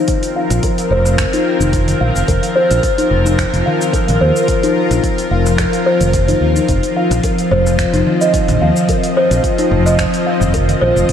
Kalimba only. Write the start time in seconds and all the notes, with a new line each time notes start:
0.36 F5
0.64 A#4
0.92 C5
1.34 D#4
1.61 D#4
2.01 F5
2.28 A#4
2.56 C5
2.98 D#4
3.26 D#4
3.66 F5
3.93 A#4
4.21 C5
4.63 D#4
4.91 D#4
5.31 F5
5.59 A#4
5.86 C5
6.29 D#4
6.56 D#4
6.97 F5
7.24 A#4
7.52 C5
7.94 D#4
8.21 D#5
8.62 F5
8.89 A#4
9.17 C5
9.59 D#4
9.86 D#5
10.27 F5
10.54 A#4
10.81 C5